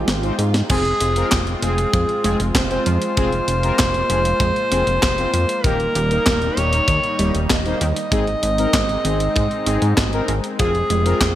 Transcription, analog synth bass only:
0.08 G#1
0.39 G#2
0.70 F1
1.01 F1
1.32 F1
1.62 F1
1.94 F2
2.24 F1
2.40 F1
2.55 F1
2.86 F2
3.17 F1
3.48 F1
3.80 F1
4.10 F1
4.40 F2
4.72 F1
4.87 F1
5.03 F1
5.34 F2
5.64 D#1
5.96 D#1
6.27 D#1
6.57 D#1
6.88 D#2
7.19 D#1
7.35 D#1
7.50 D#1
7.81 D#2
8.12 G#1
8.43 G#1
8.73 G#1
9.05 G#1
9.36 G#2
9.67 G#1
9.82 G#2
9.98 G#1
10.28 G#1
10.60 F1
10.90 F1
11.21 F1

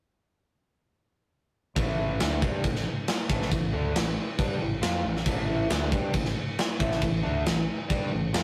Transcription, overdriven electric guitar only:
1.76 A2 E3 A3
2.20 D3 A3 D4
2.42 G3 D4 G4
2.64 A2 E3
3.29 A2 E3 A3
3.51 A2 E3
3.72 D3 A3 D4
3.94 A2 E3
4.39 G3 D4 G4
4.60 A2 E3
4.81 F3 C4 F4
5.04 A2 E3
5.25 A2 E3 A3
5.69 D3 A3 D4
5.90 G3 D4 G4
6.13 A2 E3
6.79 A2 E3 A3
7.01 A2 E3
7.22 D3 A3 D4
7.45 A2 E3
7.89 G3 D4 G4
8.12 A2 E3
8.33 F3 C4 F4

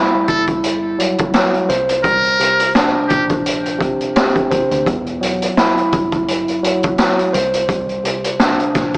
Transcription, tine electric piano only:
Already playing: E2 G3 E4
0.99 F#3
1.34 F#3
1.69 C5
2.04 C2
2.39 C3
2.76 D4
3.79 C3
4.16 C3
4.51 C5
4.87 E2
5.21 F#3
5.58 E4
6.63 F#3
6.99 F#3
7.33 C5
7.68 C2
8.04 C3
8.40 D4

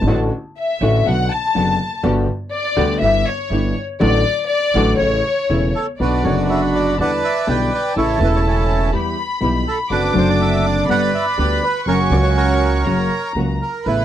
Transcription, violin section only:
0.59 E5
1.07 F#5
1.31 A5
2.52 D5
3.01 E5
3.27 C#5
4.00 D5
4.49 D5
4.99 C#5
6.00 D5
6.50 B5
6.99 A5
7.48 G5
7.95 A5
8.93 B5
9.90 D6
10.88 B5
11.87 C#6
12.86 A#5
13.85 B5

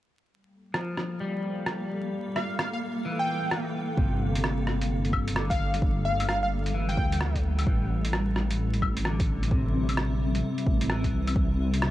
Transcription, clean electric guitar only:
0.74 F3
1.20 G3
3.05 E3
3.97 C3
5.36 D3
6.74 E3
7.67 E3
9.05 D3
9.51 C3
10.89 E3

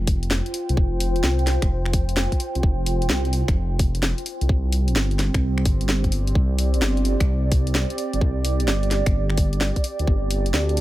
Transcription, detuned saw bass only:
Already playing: F1
0.69 C2
0.77 F1
1.16 D#1
1.24 C2
1.62 F1
2.55 C2
2.63 F1
3.02 D#1
3.10 C2
3.48 F1
4.41 C2
4.49 C2
4.88 A#1
4.96 G1
5.34 C2
5.66 G1
6.35 C2
6.74 A#1
6.82 G1
7.21 C2
8.14 G1
8.21 C2
8.60 A#1
8.68 G1
9.07 G1
10.00 D2
10.07 G1
10.46 F1
10.54 D2

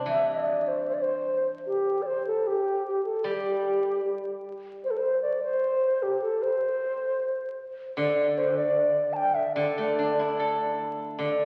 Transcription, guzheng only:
Already playing: G3 C4 D4
0.06 E3
3.24 G3
7.97 D3
9.56 D3
9.78 A3
9.99 D4
10.19 E4
10.39 A4
11.19 D3

